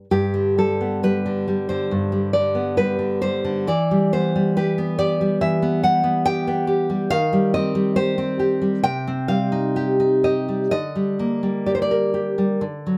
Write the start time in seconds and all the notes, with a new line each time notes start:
0.11 G2 G4
0.34 D3
0.58 G3 A4
0.81 B3
1.03 G3 B4
1.26 D3
1.48 G3
1.69 D3 C5
1.91 G2
2.12 G3
2.33 D3 D5
2.55 B3
2.77 G3 B4
2.99 D3
3.21 G3 C5
3.45 D3
3.67 E3 D5
3.91 G3
4.12 B3 C5
4.36 G3
4.57 G4 B4
4.78 B3
4.99 G4 D5
5.21 G3
5.41 E3 E5
5.62 B3
5.83 G3 F#5
6.04 B3
6.25 G4 G5
6.47 B3
6.67 G4
6.90 G3
7.10 D#3 F5
7.33 G3
7.54 C4 D#5
7.75 G3
7.96 G4 C5
8.18 C4
8.39 G4
8.62 G3
8.83 C3 G5
9.07 C4
9.28 G3 F5
9.52 D#4
9.76 G4
10.00 D#4
10.24 G4 D#5
10.48 G3
10.71 D3 D#5
10.95 G3
11.19 A#3
11.43 G3
11.66 G4 D5
11.75 C5
11.82 D5
11.91 A#4
12.14 G4
12.38 G3
12.61 D3
12.87 F#3